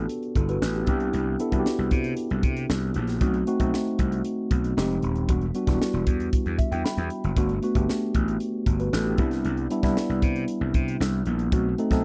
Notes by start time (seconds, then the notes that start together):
Already playing: B3 D4 F#4 G4 A4
0.09 closed hi-hat
0.23 closed hi-hat
0.35 G1 E4 A4, kick, closed hi-hat
0.49 F#4 B4, closed hi-hat
0.61 A1, snare
0.74 D4 G4, closed hi-hat
0.87 C2 B3 D4 E4 G4, kick, closed hi-hat
1.00 closed hi-hat
1.13 C2, closed hi-hat
1.39 B3 D4 E4 A4, closed hi-hat
1.52 C2 B3 D4 E4 F#4, kick, closed hi-hat
1.59 G4
1.66 snare
1.78 C2
1.91 C3, kick, closed hi-hat
2.04 closed hi-hat
2.17 closed hi-hat
2.30 C2, closed hi-hat
2.43 C3, kick, closed hi-hat
2.56 closed hi-hat
2.69 C2, snare
2.94 A#1, closed hi-hat
3.07 snare, closed hi-hat
3.21 B1 A3 C4 D#4 F#4, kick, closed hi-hat
3.34 closed hi-hat
3.47 A3 C4 D#4 F#4, closed hi-hat
3.60 B1 A3 C4 D#4 F#4, kick, closed hi-hat
3.74 snare
3.87 closed hi-hat
3.99 C2, kick, closed hi-hat
4.12 closed hi-hat
4.25 closed hi-hat
4.51 B1, kick, closed hi-hat
4.64 closed hi-hat
4.77 F1 G#3 C4 D#4 G4, snare
4.90 closed hi-hat
5.02 D#1, closed hi-hat
5.16 closed hi-hat
5.29 E1 G3 B3 D4 F#4, kick, closed hi-hat
5.41 closed hi-hat
5.54 G3 B3 D4 F#4, closed hi-hat
5.67 E1 G3 B3 D4 E4, kick, snare, closed hi-hat
5.74 F#4
5.82 snare
5.93 E1, closed hi-hat
6.07 E2, kick, closed hi-hat
6.20 closed hi-hat
6.33 kick, closed hi-hat
6.46 E2, closed hi-hat
6.58 E5, kick, closed hi-hat
6.72 E2 G5, closed hi-hat
6.85 B5, snare
6.97 E2, closed hi-hat
7.10 closed hi-hat
7.24 F#1, closed hi-hat
7.36 G1 A3 B3 D4 F#4, kick, closed hi-hat
7.49 closed hi-hat
7.62 A3 B3 D4 F#4, closed hi-hat
7.75 G1 A3 B3 D4 G4, kick, closed hi-hat
7.89 snare
8.14 A1, kick, closed hi-hat
8.28 closed hi-hat
8.40 closed hi-hat
8.66 G1, kick, closed hi-hat
8.80 F#4 B4, closed hi-hat
8.93 A1 E4 A4, snare
9.06 D4 G4
9.18 C2 G3 B3 D4 E4, kick, closed hi-hat
9.31 snare, closed hi-hat
9.45 C2, closed hi-hat
9.57 closed hi-hat
9.70 G3 B3 D4 E4, closed hi-hat
9.83 C2 G3 B3 D4 E4, kick, snare, closed hi-hat
9.97 snare
10.09 C2, closed hi-hat
10.22 C3, kick, closed hi-hat
10.36 closed hi-hat
10.48 closed hi-hat
10.61 C2
10.74 C3, kick, closed hi-hat
10.88 closed hi-hat
11.00 C2, snare
11.26 A#1, closed hi-hat
11.39 closed hi-hat
11.52 B1 A3 C4 D#4 F#4, kick, closed hi-hat
11.78 A3 C4 D#4 A4, closed hi-hat
11.91 B1 A3 C4 D#4 A4, kick, snare, closed hi-hat